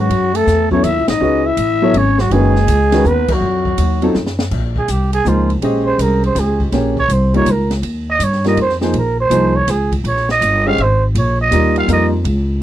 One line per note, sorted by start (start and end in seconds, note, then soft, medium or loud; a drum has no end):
0.00 0.36 F#3 medium
0.00 0.38 F#4 medium
0.10 0.46 F#2 medium
0.10 ride medium
0.34 0.71 A3 medium
0.34 0.71 A4 loud
0.34 ride medium
0.47 0.83 E2 medium
0.47 snare soft
0.47 hi-hat pedal medium
0.71 0.83 F#3 medium
0.71 0.83 B3 medium
0.71 0.85 C#4 medium
0.71 0.83 E4 medium
0.71 0.83 A4 medium
0.71 0.86 C#5 medium
0.71 0.84 C#5 medium
0.71 kick soft
0.84 0.96 D#2 medium
0.84 1.08 E4 medium
0.84 1.08 E5 loud
0.84 hi-hat pedal medium
0.84 ride medium
0.96 1.08 C#2 medium
1.08 1.20 A1 medium
1.08 1.47 D#4 medium
1.08 1.48 D#5 medium
1.08 snare medium
1.08 ride medium
1.20 1.56 C#2 medium
1.20 1.42 G#3 medium
1.20 1.43 C#4 medium
1.20 1.43 F#4 medium
1.20 1.43 B4 medium
1.20 1.43 D#5 medium
1.45 1.97 E4 medium
1.45 1.99 E5 loud
1.57 1.93 A1 medium
1.57 hi-hat pedal medium
1.57 ride medium
1.82 1.93 F#3 medium
1.82 1.93 B3 medium
1.82 1.93 E4 medium
1.82 1.94 A4 medium
1.82 1.94 C#5 medium
1.94 2.29 G#1 medium
1.94 2.21 C#4 medium
1.94 2.22 C#5 loud
1.94 ride medium
2.18 2.33 F#3 medium
2.18 2.34 F#4 medium
2.18 snare medium
2.30 2.66 F#1 medium
2.30 2.53 D#3 medium
2.30 3.08 G#3 medium
2.30 2.53 G#3 medium
2.30 2.53 C#4 medium
2.30 2.53 F#4 medium
2.30 3.08 G#4 loud
2.30 2.54 B4 medium
2.30 ride medium
2.55 snare soft
2.67 3.03 C#2 medium
2.67 hi-hat pedal medium
2.67 ride medium
2.92 3.03 D#3 medium
2.92 3.04 G#3 medium
2.92 3.04 C#4 medium
2.92 3.04 F#4 medium
2.92 3.04 B4 medium
2.92 snare medium
2.92 ride medium
3.04 3.40 D#2 loud
3.04 3.31 B3 medium
3.04 3.35 B4 loud
3.04 hi-hat pedal soft
3.28 4.15 F#3 medium
3.28 kick medium
3.28 crash medium
3.33 4.17 F#4 medium
3.41 3.77 F2 medium
3.65 kick medium
3.78 4.14 D#2 medium
3.78 hi-hat pedal medium
3.78 ride medium
4.02 4.13 F#3 medium
4.02 4.14 C4 medium
4.02 4.14 D#4 medium
4.02 4.14 F4 medium
4.02 4.14 A4 medium
4.02 ride soft
4.14 4.50 F#2 medium
4.14 snare soft
4.26 snare medium
4.39 snare medium
4.51 4.87 A#1 medium
4.51 kick medium
4.51 crash medium
4.76 4.93 G#4 medium
4.76 kick soft
4.88 5.24 C2 medium
4.88 5.12 G4 medium
4.88 hi-hat pedal medium
4.88 ride medium
5.13 5.29 G#4 loud
5.13 ride medium
5.25 5.61 C#2 loud
5.25 5.47 F3 medium
5.25 5.47 A#3 medium
5.25 5.47 D#4 medium
5.25 5.51 F4 medium
5.25 5.48 G#4 medium
5.25 5.48 C5 medium
5.25 hi-hat pedal medium
5.50 ride soft
5.62 5.98 A#1 medium
5.62 6.65 G#3 medium
5.62 6.65 C#4 medium
5.62 6.66 G4 medium
5.62 6.66 C5 medium
5.62 6.66 D#5 medium
5.62 ride medium
5.86 6.03 C5 loud
5.98 6.34 C2 medium
5.98 6.25 A#4 medium
5.98 hi-hat pedal medium
5.98 ride medium
6.24 6.41 C5 medium
6.24 ride soft
6.35 6.71 C#2 loud
6.35 snare soft
6.35 hi-hat pedal medium
6.35 ride medium
6.39 6.62 G#4 medium
6.60 kick medium
6.72 7.08 A#1 medium
6.72 6.94 A#3 medium
6.72 6.95 C#4 medium
6.72 6.95 G4 medium
6.72 6.95 G#4 medium
6.72 6.95 C#5 medium
6.72 snare soft
6.72 ride medium
6.97 7.14 C#5 loud
6.97 kick medium
7.08 7.45 C2 medium
7.08 7.35 C5 medium
7.08 hi-hat pedal medium
7.08 ride medium
7.34 7.45 G3 medium
7.34 7.45 A#3 medium
7.34 7.46 D#4 medium
7.34 7.46 F4 medium
7.34 7.46 A#4 medium
7.34 7.53 C#5 loud
7.34 ride soft
7.46 7.82 C#2 medium
7.46 hi-hat pedal medium
7.46 ride medium
7.51 7.73 A#4 medium
7.71 snare soft
7.71 ride soft
7.82 8.18 D#2 medium
7.82 ride medium
8.10 8.26 D#5 loud
8.19 8.55 G2 medium
8.19 hi-hat pedal medium
8.19 ride medium
8.24 8.46 C#5 medium
8.32 snare soft
8.44 8.56 G3 medium
8.44 8.56 A#3 medium
8.44 8.56 D#4 medium
8.44 8.56 F4 medium
8.44 8.57 A#4 medium
8.44 8.58 D#5 medium
8.44 snare soft
8.44 ride soft
8.57 8.93 F2 medium
8.57 ride medium
8.61 8.75 C5 medium
8.69 snare soft
8.81 8.93 F3 medium
8.81 8.93 A#3 medium
8.81 8.93 D#4 medium
8.81 8.93 G#4 medium
8.81 8.93 C5 medium
8.81 snare soft
8.93 9.29 A#1 medium
8.93 ride medium
8.98 9.19 A#4 medium
9.20 9.58 C5 loud
9.30 9.66 C2 medium
9.30 9.52 F3 medium
9.30 9.52 A#3 medium
9.30 9.53 D#4 medium
9.30 9.53 G#4 medium
9.30 9.53 C5 medium
9.30 hi-hat pedal medium
9.30 ride medium
9.56 9.72 C#5 loud
9.67 10.03 C#2 medium
9.67 9.93 G#4 medium
9.67 snare soft
9.67 hi-hat pedal medium
9.67 ride medium
9.92 kick medium
9.92 ride soft
10.04 10.40 A#1 medium
10.04 10.29 C#5 medium
10.04 ride medium
10.17 snare soft
10.29 10.69 D#5 loud
10.29 snare soft
10.41 10.77 G1 loud
10.41 hi-hat pedal medium
10.41 ride medium
10.66 10.77 G#3 medium
10.66 10.77 C#4 medium
10.66 10.77 G4 medium
10.66 10.77 C5 medium
10.66 10.78 D#5 medium
10.66 10.83 F5 loud
10.78 11.14 G#1 medium
10.78 11.04 C5 loud
10.78 ride medium
11.15 11.51 A#1 medium
11.15 11.39 C#5 medium
11.15 ride medium
11.41 11.75 D#5 loud
11.51 11.87 D#2 medium
11.51 11.86 G3 medium
11.51 11.87 A#3 medium
11.51 11.87 D#4 medium
11.51 11.88 F4 medium
11.51 11.88 A#4 medium
11.51 hi-hat pedal medium
11.51 ride medium
11.76 11.89 F5 loud
11.76 ride soft
11.88 12.24 F2 loud
11.88 12.10 G3 medium
11.88 12.10 A#3 medium
11.88 12.10 D#4 medium
11.88 12.11 F4 medium
11.88 12.11 A#4 medium
11.88 hi-hat pedal medium
11.88 ride medium
11.93 12.06 D#5 medium
12.24 12.61 C#2 medium
12.24 ride medium